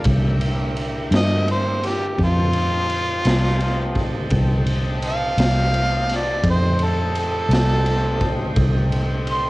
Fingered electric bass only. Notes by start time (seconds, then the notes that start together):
0.06 C2
1.11 G2
2.18 F2
3.25 C2
4.31 C2
5.37 C2
6.44 F2
7.49 C2
8.57 C2